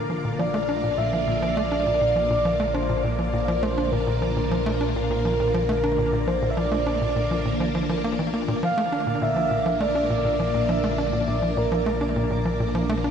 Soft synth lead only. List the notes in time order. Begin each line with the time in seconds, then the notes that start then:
Already playing: A#4
0.39 D5
0.97 E5
1.56 D5
2.74 C5
3.03 D5
3.62 C5
3.92 A#4
5.09 A#4
6.27 C5
6.50 E5
6.57 D5
8.63 F5
9.22 E5
9.81 D5
10.70 E5
10.99 D5
11.58 A#4